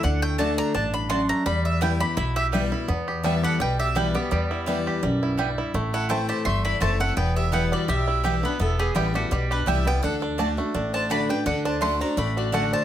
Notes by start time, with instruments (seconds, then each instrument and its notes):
0.03 upright bass D2, steel-string acoustic guitar D3, five-string banjo D4, mandolin F#5
0.22 five-string banjo A3, mandolin G5
0.38 steel-string acoustic guitar D3 A3 D4 F#4, mandolin A3 F#4 D5 A5, five-string banjo D4
0.58 five-string banjo D4, mandolin A#5
0.74 upright bass A1, steel-string acoustic guitar G2, five-string banjo D4, mandolin A5
0.94 five-string banjo D4, mandolin B5
1.09 steel-string acoustic guitar F#2, mandolin A3 F#4 D5 A5 C6, five-string banjo D4
1.29 five-string banjo A3, mandolin A#5
1.46 upright bass E2, steel-string acoustic guitar E2, five-string banjo G3, mandolin B5
1.65 mandolin E5
1.81 steel-string acoustic guitar E3 G3 B3 E4, mandolin B3 E4 B4 G5, five-string banjo E4
2.00 steel-string acoustic guitar B3 E4, five-string banjo G4, mandolin B5
2.17 upright bass B1, steel-string acoustic guitar B2, five-string banjo E4, mandolin B5
2.36 five-string banjo G4, mandolin E5
2.52 steel-string acoustic guitar E3 G3 B3 E4, five-string banjo G3, mandolin B3 E4 B4 G5
2.72 steel-string acoustic guitar B3 E4, five-string banjo E4
2.88 upright bass E2, steel-string acoustic guitar E2, five-string banjo B3
3.08 five-string banjo G4
3.23 steel-string acoustic guitar E3 G3 B3 E4, five-string banjo G3, mandolin B3 E4 B4 G5 A5, fiddle E5
3.43 five-string banjo G4, fiddle A4, mandolin F#5
3.60 upright bass B1, steel-string acoustic guitar B2, five-string banjo G3, fiddle B4, mandolin G5
3.79 five-string banjo G4, fiddle G4, mandolin E5
3.95 steel-string acoustic guitar E3 G3 B3 E4, five-string banjo G3, mandolin B3 E4 B4 G5, fiddle E4
4.14 five-string banjo B3, fiddle B3, steel-string acoustic guitar B3 E4, mandolin G4
4.31 steel-string acoustic guitar E2, upright bass E2, five-string banjo G3, fiddle B3, mandolin G4
4.51 five-string banjo E4
4.66 steel-string acoustic guitar E3 G3 B3 E4, five-string banjo G3, mandolin B3 E4 B4 G5
4.87 five-string banjo G4
5.03 upright bass B1, steel-string acoustic guitar F#2, five-string banjo G3
5.23 five-string banjo E4
5.37 steel-string acoustic guitar G2, five-string banjo G3, mandolin B3 E4 B4 G5
5.58 five-string banjo E4
5.74 upright bass A1, steel-string acoustic guitar A2, five-string banjo A3
5.93 five-string banjo E4, fiddle A4, mandolin F#5
6.09 steel-string acoustic guitar E3 A3 C4 E4, mandolin A3 E4 C5 G5 A5, five-string banjo A3, fiddle C5
6.29 five-string banjo G4, fiddle C5, mandolin A5
6.45 upright bass G1, steel-string acoustic guitar E2, five-string banjo A3, fiddle E5, mandolin C6
6.65 five-string banjo E4, fiddle D5, mandolin B5
6.80 upright bass F#1, steel-string acoustic guitar E3 A3 C4 E4, mandolin A3 E4 C5 A5, five-string banjo A3, fiddle C5
7.00 steel-string acoustic guitar C4 E4, five-string banjo E4, fiddle A4, mandolin F#5
7.17 upright bass E1, steel-string acoustic guitar E2, five-string banjo B3, fiddle B4, mandolin G5
7.36 fiddle G4, mandolin E5
7.52 steel-string acoustic guitar E3 G3 B3 E4, mandolin B3 E4 B4 F#5 G5, five-string banjo B3, fiddle B4
7.72 five-string banjo G3, fiddle F#4, mandolin D5
7.88 upright bass B1, steel-string acoustic guitar B2, five-string banjo G4, fiddle G4, mandolin E5
8.08 five-string banjo E4
8.23 steel-string acoustic guitar E3 G3 B3 E4, mandolin B3 E4 B4 G5, five-string banjo G4
8.43 five-string banjo B3, steel-string acoustic guitar B3 E4, fiddle D4, mandolin B4
8.60 upright bass E1, steel-string acoustic guitar E2, five-string banjo B3, fiddle E4, mandolin A4
8.79 fiddle B3, five-string banjo G4, mandolin G#4
8.95 upright bass A1, steel-string acoustic guitar E3 G3 B3 E4, five-string banjo G3, mandolin B3 E4 G4 B4 G5, fiddle B3
9.14 fiddle A3, steel-string acoustic guitar B3 E4, mandolin F#4, five-string banjo G4
9.31 upright bass B1, steel-string acoustic guitar B2, five-string banjo G3, fiddle B3, mandolin G4
9.51 fiddle D4, five-string banjo G4, mandolin B4
9.66 upright bass C2, steel-string acoustic guitar E3 G3 B3 E4, five-string banjo G3, mandolin B3 E4 B4 E5 G5, fiddle G4
9.85 five-string banjo B3, steel-string acoustic guitar B3 E4, fiddle B4, mandolin G5
10.03 upright bass D2, steel-string acoustic guitar D3, five-string banjo D4, fiddle A4, mandolin F#5
10.22 five-string banjo D4
10.38 steel-string acoustic guitar D3 A3 D4 F#4, mandolin A3 F#4 D5 A5, five-string banjo D4
10.57 five-string banjo A3, steel-string acoustic guitar D4 F#4
10.74 upright bass A1, steel-string acoustic guitar A2, five-string banjo D4
10.93 five-string banjo D4, fiddle C5, mandolin A5
11.09 steel-string acoustic guitar D3 A3 D4 F#4, mandolin A3 F#4 D5 A5 B5, five-string banjo D4, fiddle D5
11.29 five-string banjo D4, steel-string acoustic guitar D4 F#4, fiddle B4, mandolin G5
11.46 upright bass D2, steel-string acoustic guitar D3, five-string banjo D4, fiddle A4, mandolin F#5
11.65 five-string banjo D4, fiddle C5, mandolin A5
11.81 steel-string acoustic guitar D3 A3 D4 F#4, mandolin A3 F#4 D5 A5 C6, five-string banjo A3, fiddle F#5
12.00 five-string banjo D4, steel-string acoustic guitar D4 F#4, fiddle C5, mandolin A#5
12.17 upright bass A1, steel-string acoustic guitar A2, five-string banjo A3, fiddle D5, mandolin B5
12.36 five-string banjo D4, fiddle F#4, mandolin D5
12.52 steel-string acoustic guitar D3 A3 D4 F#4, mandolin A3 F#4 D5 F#5 A5, five-string banjo A3, fiddle A4
12.73 five-string banjo D4, fiddle C5, mandolin A5